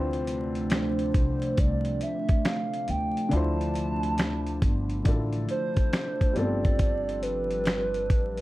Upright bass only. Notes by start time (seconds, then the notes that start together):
Already playing: D2
1.15 C2
1.58 C2
2.89 D2
3.32 D2
4.62 G1
5.06 A1
6.36 G1
8.10 A1